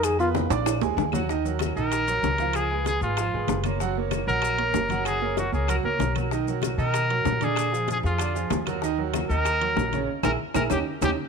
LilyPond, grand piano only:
\new Staff \with { instrumentName = "Grand piano" } { \time 4/4 \key ees \minor \tempo 4 = 191 <ees' ees'' ees'''>8 <ces' ces'' ces'''>4 <d' d'' d'''>4 <aes aes' aes''>4 <ges ges' ges''>8 | <ees ees' ees''>8 <ges ges' bes'>4 <ees ees' ees''>4 <ges ges' bes'>4 <f f' f''>8~ | <f f' f''>8 <aes aes' ces''>4 <aes aes' ces''>8 <f f' f''>8 <aes aes' ces''>4 <bes bes' des''>8 | <ges ges' ges''>8 <bes bes' des''>4 <ges ges' ges''>4 <bes bes' des''>4 <ges ges' ges''>8~ |
<ges ges' ges''>8 <bes bes' des''>4 <bes bes' des''>8 <ges ges' ges''>8 <bes bes' des''>4 <ges ges' bes'>8 | <dis dis' dis''>8 <fis fis' ais'>4 <dis dis' dis''>4 <fis fis' ais'>4 <d d' d''>8~ | <d d' d''>8 <f f' aes'>4 <f f' aes'>8 <d d' d''>8 <f f' aes'>4 <ges ges' bes'>8 | <ees ees' ees''>8 <ges ges' bes'>4 <ees ees' ees''>4 <ges ges' bes'>4 <des des' des''>8 |
r8 <fes' aes' bes'>8 r8 <fes' aes' bes'>8 <des' ees' g'>8 r8 <des' ees' g'>8 r8 | }